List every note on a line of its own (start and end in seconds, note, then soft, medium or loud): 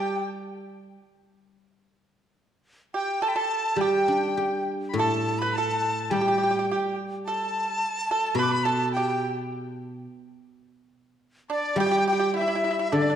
0.00 0.93 G3 medium
0.00 0.21 G4 medium
0.00 0.23 G5 medium
0.00 0.27 G5 medium
2.94 3.21 G4 medium
2.94 3.24 G5 medium
3.22 3.34 A4 medium
3.22 3.30 A5 medium
3.22 3.29 A5 medium
3.28 3.38 G5 medium
3.28 3.36 A5 medium
3.28 3.32 B5 medium
3.36 3.77 A4 medium
3.36 3.82 A5 medium
3.76 5.54 G3 medium
3.76 4.68 G5 medium
3.81 4.65 G4 medium
3.81 4.68 G5 medium
4.08 5.26 D4 soft
4.37 5.55 G4 soft
4.89 5.01 B5 medium
4.94 6.68 A2 soft
4.94 5.40 A5 medium
4.99 5.39 A4 medium
4.99 5.40 A5 medium
5.39 5.55 B4 medium
5.39 5.55 B5 medium
5.39 5.57 B5 medium
5.54 6.12 A5 medium
5.54 5.99 A5 medium
5.58 6.10 A4 medium
6.00 6.15 A5 medium
6.10 7.81 G3 soft
6.10 6.20 G4 medium
6.10 6.96 G5 medium
6.10 6.70 G5 medium
6.21 6.27 G4 soft
6.28 6.35 G4 soft
6.38 6.42 G4 soft
6.43 6.49 G4 medium
6.51 6.57 G4 soft
6.59 6.65 G4 medium
6.71 6.97 G4 medium
6.71 6.97 G5 medium
7.26 8.07 A4 medium
7.26 8.37 A5 medium
7.26 8.07 A5 medium
8.09 8.36 A4 medium
8.09 8.38 A5 medium
8.35 10.05 B2 medium
8.35 8.65 B5 medium
8.35 8.44 B5 medium
8.39 8.64 B4 medium
8.39 8.53 D6 medium
8.51 8.67 B5 medium
8.64 8.92 A4 medium
8.64 8.92 A5 medium
8.64 8.87 A5 medium
8.87 8.93 A5 soft
8.92 9.35 G5 medium
8.92 9.32 G5 medium
8.97 9.35 G4 medium
11.50 11.76 D4 medium
11.50 11.80 D5 medium
11.50 11.79 D5 medium
11.76 13.15 G3 medium
11.76 12.07 G5 medium
11.80 11.85 G4 medium
11.87 11.90 G4 medium
11.91 11.97 G4 medium
11.98 12.06 G4 medium
12.07 12.12 G4 medium
12.07 12.38 G5 medium
12.07 12.34 G5 medium
12.13 12.18 G4 soft
12.19 12.28 G4 medium
12.34 12.40 E4 medium
12.34 12.95 E5 medium
12.34 12.87 E5 medium
12.41 12.47 E4 soft
12.48 12.54 E4 medium
12.55 12.63 E4 soft
12.64 12.69 E4 soft
12.71 12.78 E4 soft
12.79 12.87 E4 medium
12.87 12.96 E5 soft
12.92 13.15 D3 soft
12.92 13.00 D4 medium
12.92 13.15 D5 medium
13.02 13.08 D4 soft
13.10 13.15 D4 soft